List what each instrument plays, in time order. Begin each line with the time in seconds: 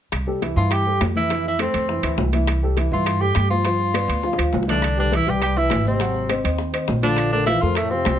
0.12 upright bass C2, high bongo, high conga, high timbale, claves
0.27 upright piano G3 G4 A4, high conga
0.42 upright piano E3 E4 E5, high bongo, high conga, high timbale
0.56 upright bass G2, upright piano E3 E4 E5, tenor saxophone F4, high conga
0.71 tenor saxophone G4, high bongo, high conga, high timbale, claves
0.86 upright piano G3 G4 A4, high conga
1.00 upright bass F2, high bongo, low bongo, high conga, high timbale, low timbale, claves
1.15 upright piano E3 E4 E5, tenor saxophone E4, high conga
1.30 upright piano E3 E4 E5, high bongo, high conga, high timbale
1.45 tenor saxophone E4, high bongo, high conga
1.59 upright piano A3 A4 C5, tenor saxophone C4, high bongo, high conga, high timbale, claves
1.74 upright bass F2, high conga, high timbale
1.88 upright piano E3 E4 E5, high bongo, high conga
2.03 upright bass D2, upright piano E3 E4 E5, high bongo, high conga, high timbale, claves
2.18 upright bass C2, high bongo, low bongo, high conga, low timbale
2.33 upright piano E3 E4 E5, high bongo, high conga, high timbale
2.47 high bongo, high conga, high timbale, claves
2.62 upright piano G3 G4 A4, high conga
2.77 upright piano E3 E4 E5, high bongo, high conga, high timbale
2.91 upright bass G2, upright piano E3 E4 E5, tenor saxophone F4, high conga
3.06 high bongo, high conga, high timbale, claves
3.21 upright piano G3 G4 A4, tenor saxophone G4, high conga
3.35 upright bass G2, high bongo, low bongo, high conga, high timbale, claves
3.50 upright piano F3 F4 F5, tenor saxophone F4, high conga
3.65 upright piano F3 F4 F5, high bongo, high conga, high timbale
3.79 high bongo, high conga
3.94 upright piano B3 B4 D5, high bongo, high conga, high timbale, claves
4.08 upright bass D2, high conga, high timbale
4.23 upright piano F3 F4 F5, high bongo, high conga
4.33 high bongo
4.38 upright bass D2, upright piano F3 F4, high conga, high timbale, claves
4.53 upright bass C2, low bongo, high conga, low timbale
4.63 low bongo
4.67 trombone D3, upright piano E3 E4 E5, tenor saxophone D4, high conga, high timbale
4.72 low bongo
4.82 high bongo, high conga, high timbale, claves, maracas
4.97 trombone D3, upright piano G3 G4 B4, tenor saxophone D4, high conga, maracas
5.12 upright piano E3 E4 E5, trombone E3, high bongo, high conga, high timbale, maracas
5.16 tenor saxophone E4
5.26 upright bass C2, upright piano G3 G4 B4, trombone G3, tenor saxophone G4, high conga, maracas
5.41 trombone G3, tenor saxophone G4, high bongo, high conga, high timbale, claves, maracas
5.56 upright piano E3 E4 E5, trombone E3, tenor saxophone E4, high conga, maracas
5.70 upright bass G#1, high bongo, low bongo, high conga, high timbale, low timbale, claves, maracas
5.85 trombone C3, upright piano C4 C5 D#5, tenor saxophone C4, high conga, maracas
6.00 upright piano F#3 F#4 F#5, high bongo, high conga, high timbale, maracas
6.15 high bongo, high conga, maracas
6.29 upright piano C4 C5 D#5, high bongo, high conga, high timbale, claves, maracas
6.44 upright bass D#2, upright piano C4 C5 D#5, high conga, high timbale, maracas
6.58 high bongo, high conga, maracas
6.73 upright piano C4 C5 D#5, high bongo, high conga, high timbale, claves, maracas
6.88 upright bass A#1, high bongo, low bongo, high conga, low timbale, maracas
7.02 trombone D3, upright piano F3 F4 F5, tenor saxophone D4, high bongo, high conga, high timbale, maracas
7.17 high bongo, high conga, high timbale, claves, maracas
7.32 trombone D3, upright piano A3 A4 A#4, tenor saxophone D4, high conga, maracas
7.46 trombone E3, upright piano F3 F4 F5, tenor saxophone E4, high bongo, high conga, high timbale, maracas
7.62 upright bass F2, trombone F3, upright piano A3 A4 A#4, tenor saxophone F4, high conga, maracas
7.75 tenor saxophone A3, high bongo, high conga, high timbale, claves, maracas
7.80 trombone A2
7.90 trombone C3, upright piano F3 F4 F5, tenor saxophone C4, high conga, maracas
8.05 upright bass C2, high bongo, low bongo, high conga, high timbale, low timbale, claves, maracas